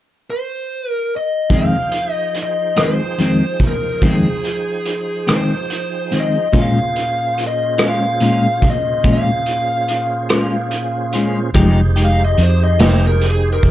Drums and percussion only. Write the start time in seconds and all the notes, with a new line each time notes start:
1.50 kick, closed hi-hat
1.92 closed hi-hat
2.34 closed hi-hat
2.76 cross-stick, closed hi-hat
3.18 closed hi-hat
3.60 kick, closed hi-hat
4.02 kick, closed hi-hat
4.44 closed hi-hat
4.85 closed hi-hat
5.28 cross-stick, closed hi-hat
5.70 closed hi-hat
6.12 closed hi-hat
6.53 kick, closed hi-hat
6.96 closed hi-hat
7.38 closed hi-hat
7.78 cross-stick, closed hi-hat
8.20 closed hi-hat
8.62 kick, closed hi-hat
9.04 kick, closed hi-hat
9.46 closed hi-hat
9.88 closed hi-hat
10.29 cross-stick, closed hi-hat
10.71 closed hi-hat
11.13 closed hi-hat
11.55 kick, closed hi-hat
11.97 closed hi-hat
12.38 closed hi-hat
12.79 snare, closed hi-hat
13.21 closed hi-hat
13.63 kick, closed hi-hat